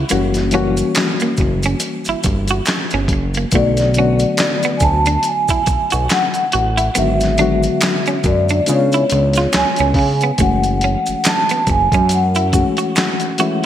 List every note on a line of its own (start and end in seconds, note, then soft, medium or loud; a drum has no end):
0.09 0.83 F#1 medium
0.09 0.46 E3 medium
0.09 0.46 G3 medium
0.09 0.46 A#3 medium
0.09 0.27 A#3 medium
0.09 0.46 C#4 medium
0.09 0.46 F#4 medium
0.09 closed hi-hat medium
0.09 maracas medium
0.34 snare soft
0.34 closed hi-hat soft
0.34 maracas soft
0.51 1.92 E3 medium
0.51 1.92 G3 medium
0.51 1.92 A#3 medium
0.51 0.69 C#4 medium
0.51 1.92 C#4 medium
0.51 1.92 F#4 medium
0.51 closed hi-hat medium
0.51 maracas soft
0.77 closed hi-hat soft
0.77 maracas soft
0.95 finger snap medium
0.95 snare loud
0.95 clap medium
0.95 closed hi-hat medium
0.95 maracas medium
1.20 1.33 A#3 medium
1.20 closed hi-hat soft
1.20 maracas soft
1.37 1.75 F#1 loud
1.37 kick medium
1.37 closed hi-hat soft
1.37 maracas soft
1.41 muted clean electric guitar stroke soft
1.63 1.76 C#4 medium
1.63 closed hi-hat medium
1.63 maracas soft
1.80 closed hi-hat medium
1.80 maracas medium
2.05 2.15 G1 soft
2.05 closed hi-hat soft
2.05 maracas soft
2.09 2.19 E4 medium
2.23 2.61 G1 medium
2.23 muted clean electric guitar stroke soft
2.23 kick medium
2.23 closed hi-hat medium
2.23 maracas soft
2.48 2.61 F#4 medium
2.48 closed hi-hat soft
2.48 maracas soft
2.66 finger snap medium
2.66 snare medium
2.66 clap medium
2.66 closed hi-hat medium
2.66 maracas medium
2.90 3.08 G1 medium
2.90 3.05 C#4 medium
2.90 closed hi-hat soft
2.90 maracas soft
3.08 3.46 F#1 medium
3.08 kick medium
3.08 closed hi-hat medium
3.13 muted clean electric guitar stroke soft
3.34 3.48 A#3 medium
3.34 closed hi-hat soft
3.34 maracas soft
3.51 4.25 B1 loud
3.51 3.89 D3 medium
3.51 3.89 F#3 medium
3.51 3.89 A3 medium
3.51 3.70 A3 medium
3.51 3.90 B3 medium
3.51 3.89 F#4 medium
3.51 4.80 D5 medium
3.51 kick loud
3.51 closed hi-hat medium
3.51 maracas medium
3.77 snare soft
3.77 closed hi-hat soft
3.77 maracas soft
3.94 5.35 D3 medium
3.94 5.35 F#3 medium
3.94 5.35 A3 medium
3.94 5.36 B3 medium
3.94 closed hi-hat medium
3.94 maracas soft
3.98 4.13 C#4 medium
3.98 5.36 F#4 medium
4.19 closed hi-hat soft
4.19 maracas soft
4.37 finger snap medium
4.37 snare loud
4.37 clap medium
4.37 closed hi-hat medium
4.37 maracas medium
4.63 4.76 B3 medium
4.63 closed hi-hat soft
4.63 maracas soft
4.77 4.82 G#5 medium
4.77 kick medium
4.77 closed hi-hat soft
4.77 maracas soft
4.82 5.18 D2 medium
4.82 5.26 A5 loud
4.82 muted clean electric guitar stroke soft
5.06 5.18 D4 medium
5.06 closed hi-hat medium
5.06 maracas soft
5.23 6.13 G#5 medium
5.23 closed hi-hat medium
5.23 maracas medium
5.48 5.61 E4 medium
5.48 kick medium
5.48 closed hi-hat soft
5.48 maracas soft
5.66 5.78 B1 soft
5.66 muted clean electric guitar stroke soft
5.66 kick medium
5.66 closed hi-hat medium
5.66 maracas soft
5.90 6.08 B1 medium
5.90 6.03 F#4 medium
5.90 closed hi-hat soft
5.90 maracas medium
6.09 6.99 F#5 loud
6.09 finger snap medium
6.09 muted clean electric guitar stroke soft
6.09 snare loud
6.09 clap medium
6.09 closed hi-hat medium
6.09 maracas medium
6.34 closed hi-hat soft
6.34 maracas soft
6.52 6.90 A1 medium
6.52 6.69 F#4 medium
6.52 closed hi-hat medium
6.77 6.89 E4 medium
6.77 closed hi-hat soft
6.77 maracas soft
6.95 7.69 G#1 loud
6.95 7.31 D3 medium
6.95 7.32 F#3 medium
6.95 7.32 G#3 medium
6.95 7.11 B3 medium
6.95 7.32 B3 medium
6.95 7.32 F#4 medium
6.95 8.29 E5 medium
6.95 closed hi-hat medium
6.95 maracas medium
7.20 snare soft
7.20 closed hi-hat soft
7.20 maracas soft
7.37 8.67 D3 medium
7.37 8.68 F#3 medium
7.37 8.66 G#3 medium
7.37 8.67 B3 medium
7.37 7.55 D4 medium
7.37 8.68 F#4 medium
7.37 closed hi-hat medium
7.37 maracas soft
7.63 closed hi-hat soft
7.63 maracas soft
7.81 finger snap medium
7.81 snare loud
7.81 clap medium
7.81 closed hi-hat medium
7.81 maracas medium
8.06 8.18 C#4 medium
8.06 closed hi-hat soft
8.06 maracas soft
8.24 8.61 F#2 loud
8.24 8.70 D5 medium
8.24 muted clean electric guitar stroke soft
8.24 kick medium
8.24 closed hi-hat soft
8.24 maracas soft
8.49 8.61 D4 medium
8.49 closed hi-hat soft
8.49 maracas soft
8.66 9.04 C#3 loud
8.66 10.06 G#3 medium
8.66 10.06 B3 medium
8.66 10.07 C#4 medium
8.66 10.06 D4 medium
8.66 10.07 F4 medium
8.66 9.93 C#5 medium
8.66 closed hi-hat medium
8.66 maracas medium
8.92 9.05 E4 medium
8.92 closed hi-hat soft
8.92 maracas soft
9.10 9.47 C#2 medium
9.10 muted clean electric guitar stroke soft
9.10 closed hi-hat medium
9.10 maracas soft
9.33 snare soft
9.33 closed hi-hat soft
9.33 maracas medium
9.38 9.48 F4 medium
9.53 9.65 C#2 soft
9.53 10.36 G#5 medium
9.53 finger snap medium
9.53 snare loud
9.53 clap medium
9.53 closed hi-hat medium
9.53 maracas medium
9.76 9.94 C#2 medium
9.76 closed hi-hat soft
9.76 maracas soft
9.80 9.91 C#4 medium
9.94 10.32 C#3 medium
9.94 kick medium
9.94 open hi-hat soft
9.99 muted clean electric guitar stroke soft
10.21 10.34 B3 medium
10.21 closed hi-hat soft
10.21 maracas soft
10.38 10.96 F#1 medium
10.38 11.78 E3 medium
10.38 11.78 G#3 medium
10.38 11.78 A3 medium
10.38 10.55 A3 medium
10.38 11.78 C#4 medium
10.38 11.79 F#4 medium
10.38 11.28 F#5 medium
10.38 kick loud
10.38 closed hi-hat medium
10.38 maracas medium
10.63 closed hi-hat soft
10.63 maracas soft
10.81 10.99 C#4 medium
10.81 closed hi-hat medium
11.06 11.15 F#1 medium
11.06 closed hi-hat soft
11.06 maracas soft
11.24 finger snap medium
11.24 snare loud
11.24 clap medium
11.24 closed hi-hat medium
11.24 maracas medium
11.28 11.66 A5 medium
11.49 11.62 B3 medium
11.49 closed hi-hat soft
11.49 maracas soft
11.67 11.89 F#1 loud
11.67 12.13 G#5 medium
11.67 muted clean electric guitar stroke soft
11.67 kick medium
11.67 closed hi-hat soft
11.67 maracas soft
11.92 12.65 F#2 loud
11.92 12.05 C#4 medium
11.92 kick medium
11.92 closed hi-hat medium
11.92 maracas soft
12.09 closed hi-hat medium
12.09 maracas medium
12.13 13.66 F#5 medium
12.35 12.47 E4 medium
12.35 closed hi-hat soft
12.35 maracas soft
12.53 13.25 E3 medium
12.53 13.25 G#3 medium
12.53 13.25 A3 medium
12.53 13.25 C#4 medium
12.53 13.25 F#4 medium
12.53 muted clean electric guitar stroke soft
12.53 kick medium
12.53 closed hi-hat medium
12.53 maracas medium
12.77 12.89 F#4 medium
12.77 closed hi-hat soft
12.77 maracas soft
12.96 finger snap medium
12.96 muted clean electric guitar stroke soft
12.96 snare loud
12.96 clap medium
12.96 closed hi-hat medium
12.96 maracas medium
13.20 closed hi-hat soft
13.20 maracas soft
13.38 13.66 E3 medium
13.38 13.66 G#3 medium
13.38 13.66 A3 medium
13.38 13.66 C#4 medium
13.38 13.66 E4 medium
13.38 13.55 F#4 medium
13.38 closed hi-hat medium
13.38 maracas soft